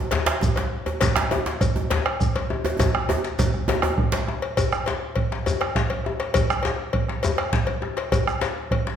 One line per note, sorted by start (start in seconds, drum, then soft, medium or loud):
0.11 bombo rim soft
0.11 cowbell soft
0.11 djembe slap medium
0.11 djembe tone medium
0.11 djembe bass medium
0.26 bombo rim medium
0.26 cowbell soft
0.26 djembe slap loud
0.41 bombo rim soft
0.41 bombo low loud
0.41 djembe tone medium
0.41 shekere medium
0.56 cowbell soft
0.56 djembe slap medium
0.86 cowbell soft
0.86 djembe tone medium
1.01 bombo low loud
1.01 cowbell medium
1.01 djembe slap medium
1.01 djembe bass medium
1.01 shekere medium
1.16 bombo rim medium
1.16 djembe slap loud
1.31 bombo rim soft
1.31 cowbell soft
1.31 djembe tone medium
1.46 djembe slap medium
1.61 bombo rim soft
1.61 bombo low loud
1.61 cowbell medium
1.61 shekere medium
1.76 djembe slap soft
1.76 djembe tone medium
1.90 bombo rim soft
1.90 cowbell medium
1.90 djembe slap medium
1.90 djembe tone medium
1.90 djembe bass medium
2.06 bombo rim medium
2.06 cowbell medium
2.21 bombo rim soft
2.21 bombo low loud
2.21 shekere medium
2.36 cowbell medium
2.36 djembe slap medium
2.50 djembe tone medium
2.65 cowbell soft
2.65 djembe tone loud
2.79 bombo low loud
2.79 cowbell medium
2.79 djembe slap medium
2.79 djembe tone loud
2.79 djembe bass medium
2.79 shekere medium
2.94 bombo rim medium
2.94 djembe slap soft
3.09 cowbell soft
3.09 djembe tone medium
3.09 djembe tone loud
3.24 bombo rim soft
3.24 djembe slap medium
3.24 shekere soft
3.39 bombo rim soft
3.39 bombo low loud
3.39 cowbell medium
3.39 djembe slap soft
3.39 djembe tone loud
3.39 shekere medium
3.54 bombo rim soft
3.68 bombo rim soft
3.68 cowbell medium
3.68 djembe slap medium
3.68 djembe tone loud
3.68 djembe tone medium
3.68 djembe bass medium
3.82 bombo rim medium
3.82 cowbell medium
3.82 djembe slap soft
3.82 djembe tone loud
3.98 bombo rim soft
3.98 bombo low loud
4.12 cowbell medium
4.12 djembe slap medium
4.12 djembe slap soft
4.12 shekere soft
4.27 bombo rim soft
4.27 djembe tone medium
4.42 cowbell soft
4.57 bombo rim soft
4.57 bombo low medium
4.57 cowbell medium
4.57 djembe bass medium
4.57 shekere medium
4.72 bombo rim medium
4.72 shekere soft
4.86 cowbell soft
4.86 djembe slap medium
4.86 djembe tone medium
4.86 shekere soft
5.16 bombo low medium
5.16 cowbell medium
5.32 bombo rim soft
5.32 djembe slap medium
5.46 cowbell medium
5.46 djembe tone medium
5.46 djembe bass medium
5.46 shekere medium
5.61 bombo rim medium
5.61 cowbell soft
5.75 bombo low medium
5.75 djembe slap medium
5.75 shekere soft
5.90 cowbell soft
5.90 djembe slap soft
6.05 bombo rim soft
6.05 djembe tone medium
6.20 bombo rim soft
6.20 cowbell medium
6.20 djembe slap medium
6.34 bombo rim soft
6.34 bombo low loud
6.34 cowbell medium
6.34 djembe bass medium
6.34 shekere medium
6.50 bombo rim medium
6.50 shekere soft
6.63 cowbell medium
6.63 djembe slap medium
6.63 djembe tone medium
6.63 shekere soft
6.93 bombo low medium
6.93 cowbell medium
7.08 bombo rim soft
7.08 djembe slap medium
7.23 cowbell medium
7.23 djembe tone medium
7.23 djembe bass medium
7.23 shekere medium
7.38 bombo rim medium
7.38 cowbell medium
7.53 bombo low loud
7.53 djembe slap medium
7.53 shekere soft
7.67 cowbell soft
7.67 djembe slap soft
7.82 bombo rim soft
7.82 djembe tone medium
7.97 bombo rim soft
7.97 cowbell medium
7.97 djembe slap medium
8.12 bombo rim soft
8.12 bombo low medium
8.12 cowbell medium
8.12 djembe bass medium
8.12 shekere medium
8.27 bombo rim medium
8.27 shekere soft
8.41 cowbell medium
8.41 djembe slap medium
8.41 djembe tone medium
8.41 shekere soft
8.71 bombo low medium
8.71 cowbell medium
8.87 bombo rim soft
8.87 djembe slap medium